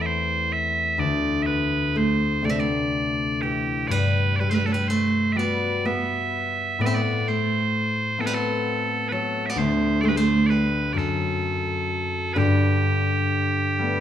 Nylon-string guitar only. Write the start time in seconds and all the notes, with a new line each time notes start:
1.96 A3
2.44 A3
2.49 C4
2.59 B3
3.43 E3
3.91 G3
4.41 G3
4.51 A3
4.57 G3
4.67 F#3
4.74 G3
4.90 A3
5.39 B3
5.85 B3
6.81 B3
6.86 C4
6.96 B3
7.28 A3
8.20 E3
8.27 G3
8.33 F#3
9.12 F#3
9.49 B3
9.58 A3
10.03 A3
10.09 G3
10.17 A3
10.51 G3
10.98 F#3
12.36 D3